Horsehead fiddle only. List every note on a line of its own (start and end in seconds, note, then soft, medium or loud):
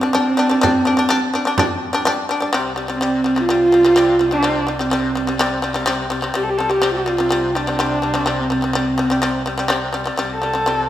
0.00 2.05 C4 medium
2.91 3.41 C4 medium
3.40 4.32 F4 loud
4.33 4.77 D4 medium
4.81 5.73 C4 medium
6.36 6.45 G4 medium
6.43 6.51 A4 medium
6.49 6.59 G4 medium
6.58 6.71 A4 medium
6.69 6.95 G4 loud
6.95 7.58 F4 medium
7.56 8.41 D4 medium
8.39 9.67 C4 medium
10.34 10.89 A4 medium